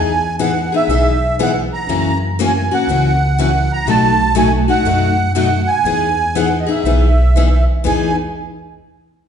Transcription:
0.00 0.67 E2 medium
0.00 0.11 E3 medium
0.00 0.11 B3 medium
0.00 0.11 D#4 medium
0.00 0.11 G#4 medium
0.00 0.36 G#5 loud
0.39 0.51 E3 medium
0.39 0.51 B3 medium
0.39 0.51 D#4 medium
0.39 0.51 G#4 medium
0.39 0.73 F#5 medium
0.72 0.89 B3 soft
0.72 0.89 D#4 medium
0.72 0.88 G#4 medium
0.72 1.37 E5 medium
0.87 1.67 B1 medium
0.87 1.11 E3 medium
0.87 1.11 B3 medium
0.87 1.12 D#4 medium
0.87 1.11 G#4 medium
1.39 1.50 E3 medium
1.39 1.51 B3 medium
1.39 1.51 D#4 medium
1.39 1.51 G#4 medium
1.39 1.56 F#5 medium
1.73 2.18 A#5 loud
1.87 2.67 F#2 medium
1.87 2.11 C#3 medium
1.87 2.11 E3 medium
1.87 2.11 A#3 medium
1.87 2.11 C#4 medium
1.87 2.11 F#4 medium
2.39 2.50 C#3 medium
2.39 2.50 E3 medium
2.39 2.50 A#3 medium
2.39 2.51 C#4 medium
2.39 2.51 F#4 medium
2.39 2.73 G#5 medium
2.71 2.89 A#3 soft
2.71 2.88 C#4 soft
2.71 2.88 F#4 medium
2.71 3.38 F#5 medium
2.87 3.67 C#2 medium
2.87 3.10 C#3 medium
2.87 3.10 E3 medium
2.87 3.11 A#3 medium
2.87 3.11 C#4 medium
2.87 3.11 F#4 medium
3.38 3.50 C#3 medium
3.38 3.50 E3 medium
3.38 3.50 A#3 medium
3.38 3.50 C#4 medium
3.38 3.50 F#4 medium
3.38 3.72 F#5 medium
3.73 3.88 A#5 loud
3.86 4.66 B1 medium
3.86 4.09 B2 medium
3.86 4.09 F#3 medium
3.86 4.10 A3 medium
3.86 4.10 D#4 medium
3.86 4.10 F#4 medium
3.90 4.35 A5 loud
4.35 4.48 B2 medium
4.35 4.48 F#3 medium
4.35 4.48 A3 medium
4.35 4.48 D#4 medium
4.35 4.48 F#4 medium
4.35 4.52 G#5 medium
4.68 4.85 A3 soft
4.68 4.85 D#4 medium
4.68 4.85 F#4 medium
4.68 5.33 F#5 medium
4.85 5.65 F#2 medium
4.85 5.08 B2 medium
4.85 5.08 F#3 medium
4.85 5.08 A3 medium
4.85 5.08 D#4 medium
4.85 5.08 F#4 medium
5.35 5.47 B2 medium
5.35 5.47 F#3 medium
5.35 5.48 A3 medium
5.35 5.48 D#4 medium
5.35 5.48 F#4 medium
5.35 5.70 F#5 medium
5.68 6.37 G#5 loud
5.84 6.64 E2 medium
5.84 6.08 E3 medium
5.84 6.08 B3 medium
5.84 6.08 D#4 medium
5.84 6.08 G#4 medium
6.35 6.47 E3 medium
6.35 6.47 B3 medium
6.35 6.48 D#4 medium
6.35 6.48 G#4 medium
6.35 6.60 F#5 medium
6.60 6.69 D#5 soft
6.66 6.85 B3 soft
6.66 6.85 D#4 medium
6.66 6.84 G#4 medium
6.66 7.65 E5 medium
6.84 7.64 B1 medium
6.84 7.07 E3 medium
6.84 7.08 B3 medium
6.84 7.08 D#4 medium
6.84 7.08 G#4 medium
7.36 7.47 E3 medium
7.36 7.48 B3 medium
7.36 7.48 D#4 medium
7.36 7.48 G#4 medium
7.84 8.15 E2 medium
7.84 8.10 E3 medium
7.84 8.11 B3 medium
7.84 8.11 D#4 medium
7.84 8.12 G#4 medium
7.84 8.16 G#5 medium

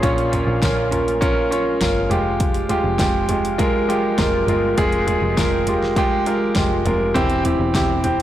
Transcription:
0.00 0.45 A#1 medium
0.00 0.88 A#2 medium
0.00 2.07 A#3 medium
0.00 0.03 C#4 loud
0.00 2.07 C#4 medium
0.00 0.27 C#4 loud
0.00 0.03 F4 medium
0.00 2.07 F4 medium
0.00 0.27 F4 medium
0.00 2.11 G4 medium
0.00 2.13 G#4 medium
0.00 0.32 A#4 medium
0.00 2.13 C5 loud
0.00 0.27 C#5 medium
0.00 kick loud
0.00 closed hi-hat medium
0.18 closed hi-hat soft
0.32 0.56 C#4 medium
0.32 0.57 F4 medium
0.32 0.57 A#4 medium
0.32 closed hi-hat medium
0.32 floor tom medium
0.47 0.61 A#1 medium
0.62 1.77 A#1 medium
0.62 0.86 C#4 medium
0.62 0.86 F4 medium
0.62 0.87 A#4 medium
0.62 kick medium
0.62 snare loud
0.62 closed hi-hat medium
0.62 tambourine medium
0.91 1.16 C#4 medium
0.91 1.16 F4 medium
0.91 1.16 A#4 medium
0.91 closed hi-hat medium
0.91 floor tom medium
1.08 closed hi-hat soft
1.21 1.45 C#4 loud
1.21 1.45 F4 medium
1.21 1.45 A#4 loud
1.21 kick loud
1.21 closed hi-hat medium
1.51 1.75 C#4 medium
1.51 1.75 F4 medium
1.51 1.75 C#5 medium
1.51 closed hi-hat medium
1.81 2.09 G1 medium
1.81 2.05 C#4 medium
1.81 2.05 F4 medium
1.81 2.05 A#4 medium
1.81 kick medium
1.81 snare medium
1.81 closed hi-hat medium
1.81 tambourine medium
2.10 2.81 F1 medium
2.10 2.58 G#3 medium
2.10 7.11 G#3 medium
2.10 2.58 F4 medium
2.10 7.11 F4 medium
2.10 2.59 G4 medium
2.10 8.22 G4 medium
2.10 closed hi-hat medium
2.10 floor tom medium
2.40 kick loud
2.40 closed hi-hat medium
2.54 closed hi-hat soft
2.69 2.94 G#3 medium
2.69 2.94 F4 medium
2.69 2.94 G4 medium
2.69 closed hi-hat medium
2.69 floor tom medium
2.84 2.98 F1 medium
2.99 4.14 F1 medium
2.99 3.23 G#3 medium
2.99 3.23 F4 medium
2.99 3.23 G4 medium
2.99 kick loud
2.99 snare medium
2.99 closed hi-hat medium
2.99 tambourine medium
3.29 3.53 G#3 medium
3.29 3.53 F4 medium
3.29 3.54 G4 medium
3.29 closed hi-hat medium
3.29 floor tom medium
3.45 closed hi-hat soft
3.58 3.83 G#3 loud
3.58 3.83 F4 medium
3.58 3.83 A#4 loud
3.58 kick loud
3.58 closed hi-hat medium
3.88 4.12 G#3 medium
3.88 4.13 F4 medium
3.88 4.13 G4 medium
3.88 closed hi-hat medium
4.18 4.46 F1 medium
4.18 4.42 G#3 medium
4.18 4.42 F4 medium
4.18 4.42 A#4 medium
4.18 kick medium
4.18 snare medium
4.18 closed hi-hat soft
4.18 tambourine medium
4.47 4.75 G1 medium
4.47 4.72 G#3 medium
4.47 4.72 F4 medium
4.47 4.72 A#4 medium
4.47 closed hi-hat medium
4.47 floor tom medium
4.77 5.19 F1 medium
4.77 5.02 G#3 medium
4.77 5.01 F4 medium
4.77 5.02 G#4 loud
4.77 kick loud
4.77 closed hi-hat medium
4.92 closed hi-hat soft
5.07 5.31 G#3 medium
5.07 5.31 F4 medium
5.07 5.31 G#4 medium
5.07 closed hi-hat medium
5.07 floor tom medium
5.22 5.36 F1 medium
5.37 6.52 F1 medium
5.37 5.61 G#3 medium
5.37 5.61 F4 medium
5.37 5.61 A#4 medium
5.37 kick medium
5.37 snare loud
5.37 closed hi-hat medium
5.37 tambourine medium
5.67 5.91 G#3 medium
5.67 5.91 F4 medium
5.67 5.91 G4 medium
5.67 closed hi-hat medium
5.67 floor tom medium
5.83 snare soft
5.96 6.20 G#3 loud
5.96 6.21 F4 medium
5.96 6.21 G4 loud
5.96 kick loud
5.96 closed hi-hat medium
6.26 6.50 G#3 medium
6.26 6.50 F4 medium
6.26 6.50 A#4 medium
6.26 closed hi-hat medium
6.55 6.84 F1 medium
6.55 6.80 G#3 medium
6.55 6.80 F4 medium
6.55 6.80 G4 medium
6.55 kick medium
6.55 snare medium
6.55 closed hi-hat medium
6.55 tambourine medium
6.85 7.13 F1 medium
6.85 7.09 G#3 medium
6.85 7.10 F4 medium
6.85 7.10 A#4 medium
6.85 closed hi-hat medium
6.85 floor tom medium
7.14 7.57 E1 medium
7.14 8.00 E3 medium
7.14 7.39 C4 loud
7.14 8.22 C4 medium
7.14 7.39 E4 medium
7.14 8.22 E4 medium
7.14 7.39 G4 loud
7.14 kick loud
7.14 closed hi-hat medium
7.30 closed hi-hat soft
7.44 7.68 C4 medium
7.44 7.69 E4 medium
7.44 7.69 G4 medium
7.44 closed hi-hat medium
7.44 floor tom medium
7.59 7.73 E1 medium
7.75 8.22 E1 medium
7.75 7.99 C4 medium
7.75 7.98 E4 medium
7.75 7.99 G4 medium
7.75 kick medium
7.75 snare loud
7.75 closed hi-hat medium
7.75 tambourine medium
8.04 8.22 C4 medium
8.04 8.22 E4 medium
8.04 8.22 G4 medium
8.04 closed hi-hat medium
8.04 floor tom medium

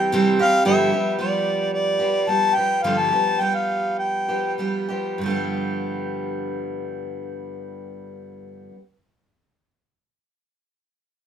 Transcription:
0.00 0.11 E3 medium
0.00 0.12 G3 medium
0.00 0.12 C4 medium
0.00 0.12 G4 medium
0.00 0.12 G5 medium
0.12 0.39 C3 medium
0.12 0.39 E3 medium
0.12 0.39 G3 medium
0.12 0.39 C4 medium
0.12 0.38 G4 medium
0.39 0.64 G3 medium
0.39 0.65 C4 medium
0.39 0.64 G4 medium
0.39 0.64 F5 loud
0.65 0.92 G2 medium
0.65 0.92 D3 medium
0.65 0.92 F3 medium
0.65 0.92 G3 medium
0.65 0.91 B3 medium
0.65 0.90 G4 medium
0.65 1.15 E5 medium
0.92 1.17 F3 soft
0.92 1.18 G3 soft
0.92 1.19 B3 soft
0.92 1.18 G4 soft
1.19 2.01 F3 medium
1.19 2.00 G3 medium
1.19 1.99 B3 soft
1.19 1.99 G4 medium
1.19 1.69 D5 medium
1.73 2.30 D5 medium
1.99 2.26 F3 soft
1.99 2.26 G3 soft
1.99 2.27 B3 soft
1.99 2.26 G4 soft
2.27 2.54 F3 soft
2.27 2.55 G3 soft
2.27 2.55 B3 soft
2.27 2.54 G4 medium
2.27 2.57 A5 medium
2.55 2.83 F3 soft
2.55 2.83 G3 soft
2.55 2.83 B3 soft
2.55 2.83 G4 soft
2.55 2.85 G5 medium
2.83 3.11 G2 medium
2.83 3.11 D3 medium
2.83 3.11 F3 medium
2.83 3.11 G3 medium
2.83 3.11 B3 medium
2.83 3.10 G4 medium
2.83 3.00 F5 medium
2.99 3.43 A5 medium
3.11 3.38 F3 soft
3.11 3.39 G3 soft
3.11 3.40 B3 soft
3.11 3.39 G4 soft
3.40 4.27 F3 soft
3.40 4.28 G3 soft
3.40 4.27 B3 soft
3.40 4.27 G4 soft
3.40 3.56 G5 medium
3.55 3.98 F5 medium
3.99 4.54 G5 medium
4.28 4.57 F3 soft
4.28 4.58 G3 soft
4.28 4.58 B3 soft
4.28 4.58 G4 soft
4.58 4.88 F3 soft
4.58 4.89 G3 soft
4.58 4.89 B3 soft
4.58 4.87 G4 soft
4.89 5.21 F3 soft
4.89 5.21 G3 soft
4.89 5.20 B3 soft
4.89 5.20 G4 soft
5.18 8.68 G2 medium
5.18 8.71 D3 medium
5.23 8.73 F3 medium
5.23 8.76 G3 medium
5.23 8.77 B3 medium
5.30 8.80 G4 medium

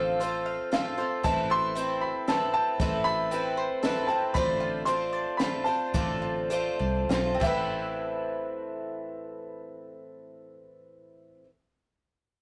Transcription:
0.00 0.57 A1 loud
0.00 0.20 A2 medium
0.00 0.20 D3 medium
0.00 0.20 A3 medium
0.00 0.21 C4 medium
0.00 0.19 F4 medium
0.00 0.21 F4 medium
0.00 0.71 A4 medium
0.00 0.23 C5 medium
0.00 0.41 F5 medium
0.00 0.45 F5 medium
0.20 0.71 A3 soft
0.20 0.72 C4 medium
0.20 0.97 F4 medium
0.20 0.72 F4 medium
0.20 0.74 C5 medium
0.20 closed hi-hat medium
0.46 1.24 F5 medium
0.72 0.98 A3 medium
0.72 0.98 C4 medium
0.72 0.97 F4 medium
0.72 1.24 A4 medium
0.72 0.96 C5 medium
0.72 1.09 F5 medium
0.72 snare medium
0.72 closed hi-hat medium
0.97 1.23 A3 soft
0.97 1.23 C4 soft
0.97 1.24 F4 medium
0.97 1.24 F4 soft
0.97 1.24 C5 soft
1.23 2.13 A1 loud
1.23 1.75 A2 medium
1.23 1.76 E3 medium
1.23 1.75 A3 medium
1.23 1.76 C4 medium
1.23 1.76 E4 medium
1.23 1.77 B4 medium
1.23 1.48 A5 medium
1.23 kick medium
1.23 closed hi-hat medium
1.50 2.27 A4 medium
1.50 2.04 C6 loud
1.75 2.27 A3 medium
1.75 2.52 C4 medium
1.75 2.28 C4 medium
1.75 2.28 E4 medium
1.75 2.29 B4 medium
1.75 closed hi-hat medium
2.01 2.28 B5 medium
2.28 2.80 A3 medium
2.28 2.81 C4 medium
2.28 2.80 E4 medium
2.28 3.04 A4 medium
2.28 2.81 B4 medium
2.28 2.52 A5 medium
2.28 snare medium
2.28 closed hi-hat medium
2.54 3.30 C4 medium
2.54 3.07 A5 medium
2.80 3.68 A1 medium
2.80 3.31 A2 medium
2.80 3.31 E3 medium
2.80 3.31 A3 medium
2.80 3.32 C4 medium
2.80 3.32 E4 medium
2.80 3.32 B4 medium
2.80 kick loud
2.80 closed hi-hat medium
3.04 3.81 A4 medium
3.04 4.11 B5 loud
3.31 3.82 A3 medium
3.31 4.07 C4 medium
3.31 3.84 C4 medium
3.31 3.84 E4 medium
3.31 3.84 B4 medium
3.31 closed hi-hat medium
3.57 4.35 C5 medium
3.83 4.09 A3 medium
3.83 4.09 C4 medium
3.83 4.09 E4 medium
3.83 4.34 A4 medium
3.83 4.08 B4 medium
3.83 snare medium
3.83 closed hi-hat medium
4.07 4.35 C4 medium
4.07 4.35 C4 soft
4.07 4.35 E4 soft
4.07 4.35 B4 soft
4.07 4.35 A5 medium
4.12 4.34 A3 soft
4.34 5.25 A1 loud
4.34 4.87 A2 medium
4.34 4.87 D3 medium
4.34 4.85 A3 medium
4.34 4.87 C4 medium
4.34 4.87 F4 medium
4.34 4.88 C5 medium
4.34 5.11 D5 medium
4.34 4.88 B5 medium
4.34 kick loud
4.34 closed hi-hat medium
4.60 5.38 F4 medium
4.85 5.39 A3 medium
4.85 5.40 C4 medium
4.85 5.66 D4 medium
4.85 5.40 F4 medium
4.85 5.41 C5 medium
4.85 5.35 C6 medium
4.85 closed hi-hat medium
5.13 5.93 D5 medium
5.37 5.67 A3 medium
5.37 5.66 C4 medium
5.37 6.21 F4 medium
5.37 5.66 F4 medium
5.37 5.66 B5 medium
5.37 snare medium
5.37 closed hi-hat medium
5.42 5.64 C5 medium
5.64 5.94 C4 soft
5.64 6.49 D4 medium
5.64 5.94 F4 soft
5.64 5.94 C5 soft
5.64 7.36 A5 medium
5.68 5.94 A3 soft
5.94 6.68 A1 loud
5.94 6.51 A2 medium
5.94 6.51 D3 medium
5.94 6.49 A3 medium
5.94 6.50 C4 medium
5.94 6.51 F4 medium
5.94 6.52 C5 medium
5.94 6.78 D5 medium
5.94 kick loud
5.94 closed hi-hat medium
6.22 7.08 F4 medium
6.50 7.09 A3 medium
6.50 7.10 C4 medium
6.50 7.41 D4 medium
6.50 7.11 F4 medium
6.50 7.11 C5 medium
6.50 closed hi-hat medium
6.79 7.07 C2 medium
6.79 7.40 D5 medium
7.09 7.38 B1 medium
7.09 7.41 A3 medium
7.09 7.42 C4 medium
7.09 7.34 F4 medium
7.09 7.42 F4 medium
7.09 7.42 C5 medium
7.09 snare medium
7.09 closed hi-hat medium
7.34 11.34 C4 medium
7.40 11.40 A1 medium
7.40 11.43 A2 medium
7.40 11.45 E3 medium
7.40 11.46 A3 medium
7.40 11.40 A4 medium
7.40 11.41 E5 medium
7.40 kick medium
7.40 crash medium
7.44 11.47 C4 medium
7.44 11.48 E4 medium
7.44 11.50 B4 medium
7.44 11.46 B4 medium

